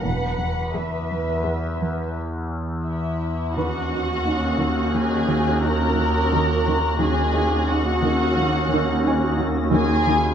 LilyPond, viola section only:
\new Staff \with { instrumentName = "Viola section" } { \time 5/4 \key ees \phrygian \tempo 4 = 87 r4 <b gis'>4 <b gis'>4 r2 | <des' ges'>1~ <des' ges'>4 | <des' ges'>1~ <des' ges'>4 | }